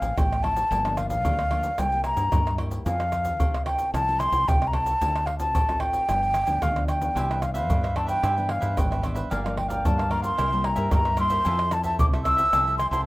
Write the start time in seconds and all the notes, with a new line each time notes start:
Already playing: D3 F3 C4 E4 F5
0.02 A1, pandeiro, low agogo, shaker, surdo
0.17 A1 A2 F3 C4 E4 G5, pandeiro, tamborim, high agogo, shaker, surdo
0.32 pandeiro, tamborim, shaker
0.43 F3 C4 E4 A5, pandeiro, tamborim, high agogo
0.56 pandeiro, shaker, surdo
0.71 G1 G2 F3 A#3 D4, pandeiro, low agogo, shaker, surdo
0.85 F3 A#3 D4, pandeiro, tamborim, shaker
0.97 F5, pandeiro, tamborim, shaker, surdo
1.09 F5, pandeiro, shaker, surdo
1.25 D2 D3 F3 A#3 D4, pandeiro, high agogo, shaker, surdo
1.39 pandeiro, tamborim, shaker
1.51 F3 A#3 D4, pandeiro, tamborim, high agogo
1.63 pandeiro, shaker, surdo
1.78 C2 C3 G3 A#3 E4 G5, pandeiro, tamborim, low agogo, shaker, surdo
1.92 G3 A#3 E4, pandeiro, shaker
2.04 A#5, pandeiro, tamborim, low agogo, shaker
2.17 G2, pandeiro, low agogo, shaker, surdo
2.32 G2 G3 A#3 E4, pandeiro, tamborim, high agogo, shaker, surdo
2.47 pandeiro, tamborim, shaker
2.58 G3 A#3 E4, pandeiro, tamborim, high agogo
2.71 pandeiro, shaker, surdo
2.86 F2 F3 C4 E4 A4 F5, pandeiro, low agogo, shaker, surdo
3.00 C4 A4, pandeiro, tamborim, shaker
3.12 pandeiro, tamborim, shaker, surdo
3.25 pandeiro, shaker, surdo
3.39 C2 C3 C4 E4 A4, pandeiro, high agogo, shaker, surdo
3.54 pandeiro, tamborim, shaker
3.66 C4 E4 A4 G5, pandeiro, tamborim, high agogo
3.79 pandeiro, shaker, surdo
3.94 C2 F3 A5, pandeiro, tamborim, low agogo, shaker, surdo
4.08 C4 E4 A4, pandeiro, shaker
4.19 C6, pandeiro, tamborim, low agogo, shaker
4.32 C2, pandeiro, low agogo, shaker, surdo
4.48 C2 C3 C4 E4 A4 G5, pandeiro, tamborim, high agogo, shaker, surdo
4.62 pandeiro, tamborim, shaker
4.67 A#5
4.73 C4 E4 A4 A5, pandeiro, tamborim, high agogo
4.86 pandeiro, shaker, surdo
5.01 D2 D3 C4 F4 A4, pandeiro, low agogo, shaker, surdo
5.16 pandeiro, tamborim, shaker
5.26 F5, pandeiro, tamborim
5.39 C4 F4 A4 A5, pandeiro, shaker, surdo
5.55 A1 A2, pandeiro, high agogo, shaker, surdo
5.69 C4 F4 A4, pandeiro, tamborim, shaker
5.80 G5, pandeiro, tamborim, high agogo
5.93 pandeiro, shaker, surdo
6.08 G1 G2 F3 B3 D4, pandeiro, tamborim, low agogo, shaker, surdo
6.23 pandeiro, shaker
6.34 pandeiro, tamborim, low agogo, shaker
6.47 D2 F3 B3 D4, pandeiro, low agogo, shaker, surdo
6.62 D2 D3 F5, pandeiro, tamborim, high agogo, shaker, surdo
6.76 F3 B3 D4, pandeiro, tamborim, shaker
6.88 G5, pandeiro, tamborim, high agogo, shaker
7.00 E3 B3 D4, pandeiro, shaker, surdo
7.15 C2 C3 G4 B4 C5 E5, pandeiro, low agogo, shaker, surdo
7.30 E3 B3 D4 B4 C5 E5, pandeiro, tamborim, shaker
7.41 F5, muted cavaquinho stroke, pandeiro, tamborim, shaker, surdo
7.54 B4 C5 E5 F5, pandeiro, shaker, surdo
7.69 G2 E3 B3 D4, pandeiro, high agogo, shaker, surdo
7.83 B4 C5 E5, pandeiro, tamborim, shaker
7.95 E3 B3 D4 G4 B4 C5 E5 A5, pandeiro, tamborim, high agogo
8.07 B4 C5 E5 G5, pandeiro, shaker, surdo
8.22 G2 C3 G4 B4 C5 E5, pandeiro, tamborim, low agogo, shaker, surdo
8.36 E3 B3 D4 B4 C5 E5, pandeiro, shaker
8.48 F5, muted cavaquinho stroke, pandeiro, tamborim, low agogo
8.60 G2 B4 C5 E5, pandeiro, low agogo, shaker, surdo
8.76 G#1 G2 E3 B3 D4 G5, pandeiro, tamborim, high agogo, shaker, surdo
8.91 B4 C5 E5, pandeiro, tamborim, shaker
9.02 E3 B3 D4 G4 B4 C5 E5, pandeiro, tamborim, high agogo, shaker
9.14 B4 C5 E5, pandeiro, shaker, surdo
9.30 G1 G2 F3 A#3 D4 G4 A#4 D5 F5, pandeiro, low agogo, shaker, surdo
9.44 F3 A#3 D4 A#4 D5 F5, pandeiro, tamborim, shaker
9.56 G5, muted cavaquinho stroke, pandeiro, tamborim, surdo
9.68 A#4 D5 F5 G5, pandeiro, shaker, surdo
9.85 G2 D3 F3 A#3 D4 A5, pandeiro, high agogo, shaker, surdo
9.98 A#4 D5 F5, pandeiro, tamborim, shaker
10.09 F3 A#3 D4 G4 A#4 D5 F5 A#5, pandeiro, tamborim, high agogo
10.22 A#4 D5 F5 C6, pandeiro, shaker, surdo
10.37 C2 C3 G3 A#3 E4 A#4 C5 E5, pandeiro, tamborim, low agogo, shaker, surdo
10.52 G3 A#3 E4 A#4 C5 E5, pandeiro, shaker
10.64 A#5, muted cavaquinho stroke, pandeiro, tamborim, low agogo
10.76 G2 A#4 C5 E5, pandeiro, low agogo, shaker, surdo
10.91 G2 G3 A#3 E4 A#5, pandeiro, tamborim, high agogo, shaker, surdo
11.05 A#4 C5 E5, pandeiro, tamborim, shaker
11.17 G3 A#3 E4 A#4 C5 E5 C6, pandeiro, tamborim, high agogo, shaker
11.30 A#4 C5 E5, pandeiro, shaker, surdo
11.45 F2 F3 C4 E4 F4 A4 C5 E5, pandeiro, low agogo, shaker, surdo
11.59 C5 E5, pandeiro, tamborim, shaker
11.71 C4 E4 A4 A5, muted cavaquinho stroke, pandeiro, tamborim, shaker
11.84 A4 C5 E5 A5, pandeiro, shaker, surdo
11.99 C2 C3 D6, pandeiro, high agogo, shaker, surdo
12.13 C4 E4 A4 C5 E5, pandeiro, tamborim, shaker
12.24 C4 E4 F4 A4 C5 E5 E6, pandeiro, tamborim, high agogo, shaker
12.37 A4 C5 E5, pandeiro, shaker, surdo
12.53 C2 F3 C4 E4 F4 A4 C5 E5, pandeiro, tamborim, low agogo, shaker, surdo
12.67 A4 C5 E5, pandeiro, shaker
12.78 C6, muted cavaquinho stroke, pandeiro, tamborim, low agogo, shaker
12.91 C2 A4 C5 E5 C6, pandeiro, low agogo, shaker, surdo